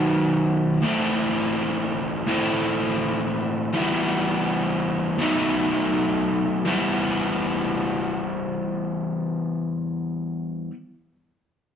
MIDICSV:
0, 0, Header, 1, 2, 480
1, 0, Start_track
1, 0, Key_signature, 1, "minor"
1, 0, Tempo, 726392
1, 560, Time_signature, 4, 2, 24, 8
1, 7769, End_track
2, 0, Start_track
2, 0, Title_t, "Overdriven electric guitar"
2, 0, Program_c, 0, 29
2, 0, Note_on_c, 0, 47, 71
2, 0, Note_on_c, 0, 51, 66
2, 0, Note_on_c, 0, 54, 75
2, 0, Note_on_c, 0, 59, 72
2, 0, Note_on_c, 0, 63, 79
2, 0, Note_on_c, 0, 69, 76
2, 538, Note_off_c, 0, 47, 0
2, 540, Note_on_c, 0, 45, 104
2, 544, Note_off_c, 0, 51, 0
2, 546, Note_off_c, 0, 54, 0
2, 546, Note_off_c, 0, 59, 0
2, 547, Note_on_c, 0, 52, 96
2, 549, Note_off_c, 0, 63, 0
2, 549, Note_on_c, 0, 57, 97
2, 552, Note_off_c, 0, 69, 0
2, 555, Note_on_c, 0, 64, 104
2, 556, Note_on_c, 0, 60, 93
2, 559, Note_on_c, 0, 69, 102
2, 1489, Note_off_c, 0, 45, 0
2, 1497, Note_on_c, 0, 45, 68
2, 1498, Note_off_c, 0, 52, 0
2, 1504, Note_off_c, 0, 60, 0
2, 1506, Note_off_c, 0, 57, 0
2, 1506, Note_off_c, 0, 64, 0
2, 1506, Note_on_c, 0, 52, 72
2, 1511, Note_off_c, 0, 69, 0
2, 1512, Note_on_c, 0, 60, 83
2, 1513, Note_on_c, 0, 57, 90
2, 1514, Note_on_c, 0, 64, 84
2, 1520, Note_on_c, 0, 69, 77
2, 2456, Note_off_c, 0, 52, 0
2, 2460, Note_off_c, 0, 45, 0
2, 2464, Note_on_c, 0, 52, 100
2, 2467, Note_off_c, 0, 57, 0
2, 2468, Note_off_c, 0, 60, 0
2, 2469, Note_off_c, 0, 64, 0
2, 2470, Note_on_c, 0, 55, 101
2, 2472, Note_off_c, 0, 69, 0
2, 2477, Note_on_c, 0, 59, 101
2, 2483, Note_on_c, 0, 64, 113
2, 3423, Note_off_c, 0, 52, 0
2, 3426, Note_on_c, 0, 47, 82
2, 3427, Note_off_c, 0, 55, 0
2, 3431, Note_off_c, 0, 59, 0
2, 3432, Note_on_c, 0, 54, 93
2, 3434, Note_off_c, 0, 64, 0
2, 3440, Note_on_c, 0, 57, 94
2, 3446, Note_on_c, 0, 63, 93
2, 4385, Note_off_c, 0, 47, 0
2, 4388, Note_off_c, 0, 54, 0
2, 4392, Note_off_c, 0, 57, 0
2, 4394, Note_on_c, 0, 52, 93
2, 4395, Note_off_c, 0, 63, 0
2, 4402, Note_on_c, 0, 55, 100
2, 4413, Note_on_c, 0, 59, 103
2, 4421, Note_on_c, 0, 64, 107
2, 7069, Note_off_c, 0, 52, 0
2, 7078, Note_off_c, 0, 55, 0
2, 7088, Note_off_c, 0, 59, 0
2, 7096, Note_off_c, 0, 64, 0
2, 7769, End_track
0, 0, End_of_file